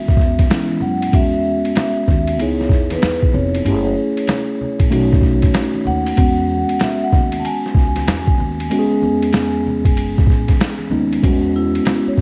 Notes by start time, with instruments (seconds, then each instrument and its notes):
Already playing: upright bass E3, tine electric piano G#3 B3 C#4 F#4, vibraphone E5
0.06 kick, snare, high conga, maracas
0.17 upright bass E2, kick, snare, maracas
0.38 kick, snare, ride, high conga, maracas
0.49 upright bass E3, tine electric piano G#3 B3 C#4 E4, snare, hi-hat pedal, ride, maracas
0.69 high conga, maracas
0.80 upright bass F#2, vibraphone F#5, low conga, maracas
1.01 ride, maracas
1.11 upright bass E2, tine electric piano F#3 B3 C#4 F#4, vibraphone E5, kick, ride, maracas
1.18 tine electric piano G#3
1.33 maracas
1.44 maracas
1.64 ride, maracas
1.75 vibraphone E5, snare, hi-hat pedal, ride, low conga, maracas
1.97 maracas
2.08 upright bass D#2, kick, snare, low conga, maracas
2.27 ride, maracas
2.38 upright bass C#2, tine electric piano B3 D#4 E4 G#4, vibraphone C#5, ride, high conga, maracas
2.59 snare, maracas
2.69 upright bass E2, kick, snare, maracas
2.90 vibraphone B4, snare, ride, high conga, maracas
3.02 upright bass E2, snare, hi-hat pedal, ride, maracas
3.22 kick, high conga, maracas
3.33 upright bass F1, vibraphone C#5, low conga, maracas
3.54 ride, maracas
3.65 upright bass F#1, tine electric piano A3 C#4 E4 G4, ride, maracas
3.73 tine electric piano G#4
3.85 maracas
3.97 maracas
4.17 ride, maracas
4.27 snare, hi-hat pedal, ride, low conga, maracas
4.49 maracas
4.61 low conga, maracas
4.79 upright bass A1, kick, ride, maracas
4.90 upright bass B1, tine electric piano A3 C#4 D#4 F#4, ride, high conga, maracas
5.12 kick, snare, maracas
5.21 upright bass B1, kick, snare, maracas
5.42 kick, snare, ride, high conga, maracas
5.54 snare, hi-hat pedal, ride, maracas
5.74 high conga, maracas
5.85 upright bass D#2, vibraphone F#5, low conga, maracas
6.06 ride, maracas
6.16 upright bass E2, tine electric piano G#3 B3 C#4 F#4, kick, ride, maracas
6.38 maracas
6.50 maracas
6.69 ride, maracas
6.80 vibraphone E5, snare, hi-hat pedal, ride, low conga, maracas
7.02 vibraphone F#5, maracas
7.13 upright bass D#2, kick, snare, low conga, maracas
7.32 ride, maracas
7.39 vibraphone A5, high conga, maracas
7.45 vibraphone G#5, ride
7.63 snare, maracas
7.75 upright bass C#2, kick, snare, maracas
7.95 snare, ride, high conga, maracas
8.07 upright bass E2, snare, hi-hat pedal, ride, maracas
8.26 kick, high conga, maracas
8.38 upright bass D#2, low conga, maracas
8.58 ride, maracas
8.70 tine electric piano G#3 B3 C#4 F#4, ride, maracas
8.79 tine electric piano G#4
8.90 maracas
9.02 upright bass E2, high conga, maracas
9.22 ride, maracas
9.33 snare, hi-hat pedal, ride, low conga, maracas
9.55 maracas
9.66 low conga, maracas
9.84 upright bass F#1, kick, ride, maracas
9.96 ride, high conga, maracas
10.16 kick, snare, high conga, maracas
10.27 upright bass A1, kick, snare, maracas
10.48 kick, snare, ride, high conga, maracas
10.59 snare, hi-hat pedal, ride, maracas
10.79 high conga, maracas
10.90 upright bass D#2, tine electric piano G#3 B3 C#4 D#4, low conga, maracas
11.11 ride, maracas
11.22 upright bass E2, tine electric piano G3 B3 C#4 F#4, kick, ride, maracas
11.29 tine electric piano G#3
11.43 maracas
11.54 vibraphone E4, maracas
11.75 ride, maracas
11.85 snare, hi-hat pedal, ride, low conga, maracas
12.07 vibraphone C#5, muted upright bass stroke, maracas
12.18 upright bass D#2, kick